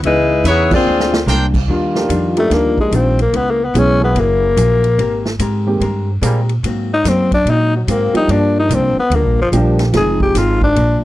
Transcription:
0.03 C#2 C#3 E3 G#3 B3 D#4 E4 B4, ride
0.44 E2 C#3 E3 B3 D#4 E4 G#4 B4 C#5 E5, hi-hat pedal, ride
0.48 B3 C#5
0.71 F3 A#3 C4 D4 F4 G#4 D5, kick, crash
0.85 D2 A#2 G#3 C4 D4
1.00 snare
1.14 snare
1.26 C2 A#2 G#3 C4 D4 A#4 C5 G5, snare, hi-hat pedal
1.54 kick, crash
1.68 D#2 D#3 G3 D4 F4
1.95 F3 A#3 D4 D#4 G4, snare
2.09 F2 D#3 G3 D4 F4, hi-hat pedal, ride
2.37 F3 A3 A#3 D4 D#4 G4, ride
2.50 D2 D#3 G3 A#3 D4 F4, snare, ride
2.78 G#3, kick
2.91 A#1 D#3 G3 D4 F4, hi-hat pedal, ride
2.96 C4
3.19 A#3, ride
3.32 C#2 C#3 G#3 B3 E4, ride
3.37 B3
3.51 A#3
3.65 B3
3.74 B1 C#3 E3 G#3 B3 C#4 E4 G#4, hi-hat pedal, ride
3.79 C#4
4.00 F#3 A#3 E4 G#4
4.04 B3
4.15 F#1 F#3 A#3 E4 G#4, ride
4.20 A#3
4.57 A#1 F#3 A#3 E4 G#4, hi-hat pedal, ride
4.84 ride
4.97 G#1 G#3 C4 G4 A#4, ride
5.25 snare
5.39 G#2 G#3 C4 G4 A#4, hi-hat pedal, ride
5.67 D#3 G#3 A#3 C4 G4
5.80 G2 G#3 C4 G4 A#4, ride
6.21 A#2 G3 G#3 A#3 C4 G4 G#4 A#4, hi-hat pedal, ride
6.49 ride
6.63 G#2 F#3 A#3 C4, ride
6.94 D#4
7.04 F#2 G#2 F#3 A#3 C4, snare, hi-hat pedal, ride
7.09 C4
7.32 D4, kick, ride
7.45 G#2 A#2 F#3 A#3, ride
7.49 C4 D#4
7.76 F#3
7.87 G#2 F#3 A#3 C4, hi-hat pedal, ride
8.14 F3 G3 A#3 D4 D#4 G4, muted upright bass stroke, ride
8.28 G2 F3 A#3 D4, ride
8.59 D#4
8.69 C2 G2 F3 A#3 D4, hi-hat pedal, ride
8.75 C4
8.96 B3, muted upright bass stroke
9.10 D2 G2 F3 A#3, ride
9.14 A#3 D4
9.24 A#1
9.38 G1 F3
9.52 A#1 G2 F3 G3 A#3 D4 G4, hi-hat pedal, ride
9.79 snare, ride
9.93 F1 F2 D#3 F3 G#3 C4 D#4 G#4, snare, ride
9.97 G#4
10.20 G4, kick
10.35 G#1 F2 D#3 G#3 C4 F4, snare, hi-hat pedal, ride
10.61 D4, kick
10.76 A#1 A#2 F3 G#3 D4, ride

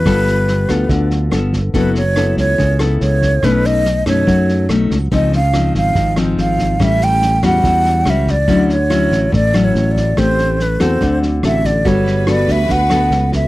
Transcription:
Already playing: B4
0.05 G1 G3 B3 F4 A4, kick, cross-stick, snare
0.27 snare
0.48 snare
0.68 D2 B3 F4 A4, kick, cross-stick, snare
0.89 D2 D3, kick, snare
1.10 snare
1.31 G1 B3 F4 A4, cross-stick, snare
1.53 kick, snare
1.74 F#1 F#3 B3 E4 A4 B4, kick, snare
1.95 C#5, snare
2.16 B3 E4 A4, cross-stick, snare
2.37 C#2 C#5, kick, snare
2.58 C#2 C#3, kick, snare
2.79 B3 E4 A4, cross-stick, snare
3.01 C#2 C#5, snare
3.22 kick, snare
3.43 B1 B2 A3 C#4 D#4 B4, kick, cross-stick, snare
3.64 D#5, snare
3.85 snare
4.06 F#2 A3 C#4 D#4 C#5, kick, cross-stick, snare
4.27 F#2 F#3, kick, snare
4.48 snare
4.69 B1 A3 C#4 D#4, cross-stick, snare
4.91 C#2, kick, snare
5.12 C#2 C#3 F3 C4 D#4 D#5, kick, snare
5.33 F5, snare
5.53 F3 C4 D#4, cross-stick, snare
5.75 G#1 F5, kick, snare
5.95 G#1 G#2, kick, snare
6.16 F3 C4 D#4, cross-stick, snare
6.37 G#1 F5, snare
6.59 kick, snare
6.79 A1 A2 G3 C#4 E5, kick, cross-stick, snare
7.01 G5, snare
7.22 snare
7.43 E2 G3 C#4 F#4 F#5, kick, cross-stick, snare
7.64 E2 E3, kick, snare
7.85 snare
8.05 C#2 G3 C#4 F#4, cross-stick, snare
8.10 E5
8.27 D5, kick, snare
8.47 D2 D3 F#3 C#4 E4, kick, snare
8.69 C#5, snare
8.90 F#3 C#4 E4, cross-stick, snare
9.11 A1, kick, snare
9.32 A1 A2 D5, kick, snare
9.54 F#3 C#4 E4, cross-stick, snare
9.64 C#5
9.75 A1, snare
9.92 D5
9.96 kick, snare
10.17 A1 A3 C4 G4 C5, kick, cross-stick, snare
10.38 snare
10.60 B4, snare
10.80 E2 C4 F#4 A4 C5, kick, cross-stick, snare
11.01 D2 D3, kick, snare
11.22 snare
11.43 A1 C4 F#4 A4 E5, cross-stick, snare
11.64 D5, kick, snare
11.85 G1 G3 A3 B3 F#4 A4 B4 C#5, kick, snare
12.07 snare
12.27 B3 F#4 A4 D5, cross-stick, snare
12.48 D2 E5, kick, snare
12.69 D2 F#5, kick, snare
12.90 B3 F#4 A4, cross-stick, snare
13.11 C#2, snare
13.32 E5, kick, snare

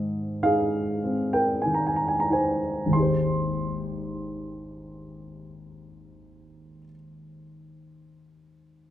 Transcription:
Already playing: G#2 D#3 G4 D#5
0.43 D#4 G#4 F5
1.04 C4
1.33 A#4 G5
1.62 D#3 G#5
1.74 A#5
1.87 G#5
1.96 A#5
2.08 G#5
2.20 A#5
2.30 D#4 C5 G#5
2.86 G#1 D#2
2.93 G#3 D#4 C6
2.99 G4 C5

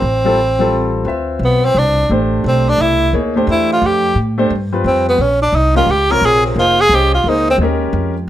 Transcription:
Already playing: C4
0.02 A1
0.25 G3 C4 F4 A4
0.59 G3 C4 F4 A4
1.05 D2 C4 F4 B4 E5
1.39 B1
1.44 B3
1.65 C4
1.75 C2 D4
2.09 A1 A3 D4 G4 C5
2.44 B1 C4
2.69 D4
2.78 C2 E4
3.13 D2 A#3 D#4 G#4 C#5
3.36 A3 D4 G4 C5
3.47 E2 E4
3.72 F4
3.82 F2
3.86 G4
4.15 A2
4.38 A3 D4 G4 C5
4.50 G2
4.73 G3 C4 F4 B4
4.84 F2 C4
5.08 B3
5.18 A#1 C#4
5.42 D4
5.52 C2 D#4
5.75 G#3 C#4 F4 G4 A#4
5.87 C#2 G4
6.10 C3 F4 A#4 C#5
6.21 A#1
6.26 G#4
6.46 C4
6.56 F1 A#3 D#4 F4 G#4 C5
6.80 G#4
6.89 C2 C#4 G4 C5
6.94 G4 D#5
7.14 F4
7.24 C#2 A#3 D#4 G#4
7.29 D#4 C5
7.50 C4
7.58 D#2 G#3
7.62 C#4 G4 A#4
7.93 F2

